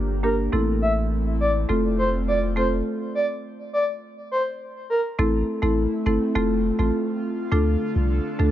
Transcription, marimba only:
0.00 0.17 A#3 medium
0.00 0.17 D4 medium
0.00 0.17 G4 medium
0.00 0.17 A#4 medium
0.23 0.36 A#3 medium
0.23 0.36 D4 medium
0.23 0.36 G4 medium
0.23 0.36 A#4 medium
0.52 1.06 A3 medium
0.52 1.06 C4 medium
0.52 1.06 E4 medium
0.52 1.07 A4 loud
1.69 2.49 A3 medium
1.69 2.50 C4 medium
1.69 2.50 F4 medium
1.69 2.50 A4 loud
2.56 2.69 A3 medium
2.56 2.69 C4 medium
2.56 2.69 F4 medium
2.56 2.69 A4 medium
5.19 5.59 A3 medium
5.19 5.59 C4 medium
5.19 5.59 E4 medium
5.19 5.59 A4 loud
5.62 5.75 A3 medium
5.62 5.75 C4 medium
5.62 5.75 E4 medium
5.62 5.75 A4 medium
6.06 6.18 A3 medium
6.06 6.18 C4 medium
6.06 6.19 E4 medium
6.06 6.19 A4 medium
6.35 6.75 A3 loud
6.35 6.76 C4 medium
6.35 6.76 F4 medium
6.35 6.76 A4 loud
6.79 6.91 A3 medium
6.79 6.91 C4 medium
6.79 6.91 F4 medium
6.79 6.92 A4 medium
7.52 8.05 A3 medium
7.52 8.05 D4 medium
7.52 8.06 F4 medium
7.52 8.06 A4 loud
8.39 8.51 A3 medium
8.39 8.51 D4 medium
8.39 8.51 F4 medium
8.39 8.51 A4 medium

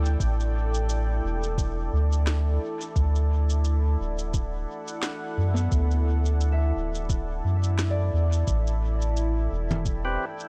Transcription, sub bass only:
0.00 0.17 D2 loud
0.20 1.21 A1 loud
1.24 1.90 E1 loud
1.93 2.59 D2 loud
2.96 3.97 D2 loud
4.00 4.66 D1 loud
5.37 5.68 F#2 loud
5.72 6.72 D2 loud
6.76 7.42 D1 loud
7.44 8.10 F#2 medium
8.13 8.44 E2 medium
8.48 9.48 A1 loud
9.51 10.17 E1 loud

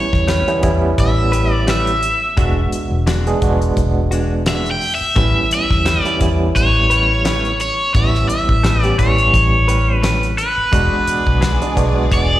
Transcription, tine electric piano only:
0.00 0.41 G3 medium
0.00 0.41 B3 medium
0.00 0.41 C#4 medium
0.00 0.41 E4 medium
0.48 0.61 G3 medium
0.48 0.62 B3 medium
0.48 0.62 C#4 medium
0.48 0.62 E4 loud
0.63 1.94 G3 medium
0.63 1.94 B3 medium
0.63 1.94 C#4 medium
0.63 1.94 E4 medium
2.37 3.20 G#3 medium
2.37 3.20 B3 medium
2.37 3.20 D4 medium
2.37 3.20 F#4 medium
3.26 3.41 G#3 medium
3.26 3.41 B3 medium
3.26 3.41 D4 medium
3.26 3.41 G#4 loud
3.42 4.73 G#3 medium
3.42 4.73 B3 medium
3.42 4.73 D4 medium
3.42 4.73 F#4 medium
5.16 5.99 G3 medium
5.16 5.99 B3 medium
5.16 5.99 C#4 medium
5.16 5.99 E4 medium
6.05 6.19 G3 medium
6.05 6.20 B3 medium
6.05 6.20 C#4 medium
6.05 6.20 E4 medium
6.21 7.52 G3 medium
6.21 7.52 B3 medium
6.21 7.52 C#4 medium
6.21 7.52 E4 medium
7.95 8.77 G3 medium
7.95 8.77 B3 medium
7.95 8.77 C#4 medium
7.95 8.77 E4 medium
8.83 8.98 G3 medium
8.83 8.98 B3 medium
8.83 8.98 C#4 medium
8.83 8.98 G4 medium
8.99 10.29 G3 medium
8.99 10.30 B3 medium
8.99 10.30 C#4 medium
8.99 10.30 E4 medium
10.73 11.55 G#3 medium
10.73 11.55 B3 medium
10.73 11.55 D4 medium
10.73 11.55 F#4 medium
11.62 11.75 G#3 medium
11.62 11.76 B3 medium
11.62 11.76 D4 medium
11.62 11.76 G#4 medium
11.76 12.40 G#3 medium
11.76 12.40 B3 medium
11.76 12.40 D4 medium
11.76 12.40 F#4 medium

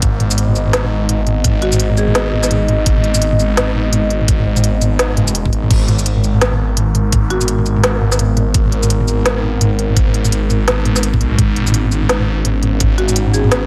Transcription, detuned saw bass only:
0.02 0.55 G#1 medium
0.56 1.08 G#1 loud
1.09 1.61 G#1 medium
1.62 2.32 G#1 loud
2.33 2.85 G#1 loud
2.87 3.39 G#1 medium
3.39 3.92 G#1 loud
3.93 4.45 G#1 loud
4.46 5.51 G#1 loud
5.53 5.69 G#1 loud
5.71 6.23 G#1 loud
6.24 6.76 G#1 loud
6.77 7.29 G#1 loud
7.30 8.00 G#1 loud
8.01 8.53 G#1 loud
8.55 9.07 G#1 loud
9.08 9.60 G#1 loud
9.61 10.13 G#1 loud
10.14 11.20 G#1 medium
11.21 11.37 B1 loud
11.39 11.91 G#1 medium
11.92 12.44 G#1 loud
12.45 12.97 G#1 medium
12.98 13.66 G#1 medium

